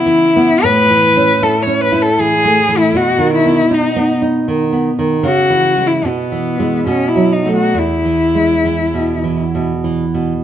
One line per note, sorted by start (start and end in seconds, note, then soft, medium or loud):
0.00 0.59 C#3 medium
0.00 0.25 B3 soft
0.00 0.65 E4 medium
0.06 0.52 E3 soft
0.36 0.64 B3 soft
0.64 2.91 A2 medium
0.64 1.44 B4 medium
0.90 1.31 E3 soft
1.17 1.57 C#4 soft
1.42 1.83 E4 medium
1.42 1.64 A4 medium
1.62 1.82 C#5 medium
1.67 2.08 C#4 soft
1.81 2.03 B4 medium
1.92 2.34 E4 medium
2.02 2.22 A4 medium
2.19 2.59 E3 medium
2.19 2.79 G#4 medium
2.44 2.85 A3 soft
2.68 2.95 E3 soft
2.78 2.98 E4 medium
2.95 5.22 B2 medium
2.95 3.33 F#4 medium
3.19 3.61 D#3 soft
3.34 3.75 E4 medium
3.46 3.87 B3 soft
3.71 4.13 D#4 soft
3.71 4.11 D#4 medium
3.96 4.38 B3 soft
4.22 4.64 D#4 soft
4.48 4.89 D#3 soft
4.72 5.15 B3 soft
4.99 5.25 D#3 soft
5.23 6.03 C#3 medium
5.23 5.89 F#4 medium
5.50 5.77 E3 soft
5.78 6.03 E3 soft
5.78 6.03 G#3 soft
5.87 6.08 E4 medium
6.05 6.86 B2 medium
6.05 6.87 B3 medium
6.32 6.59 E3 soft
6.60 6.85 E3 soft
6.60 6.85 G#3 soft
6.87 7.73 B2 medium
6.87 7.10 C#4 medium
7.09 7.34 E4 medium
7.16 7.44 F#3 soft
7.32 7.55 D#4 medium
7.45 7.73 F#3 soft
7.45 7.73 A3 soft
7.57 7.79 F#4 medium
7.74 10.40 E2 soft
7.74 9.57 E4 medium
8.05 8.54 E3 soft
8.35 8.84 G#3 soft
8.65 9.14 E3 soft
8.94 9.43 B2 soft
9.24 9.73 E3 soft
9.55 10.03 B2 soft
9.84 10.33 E3 soft
10.14 10.44 B2 soft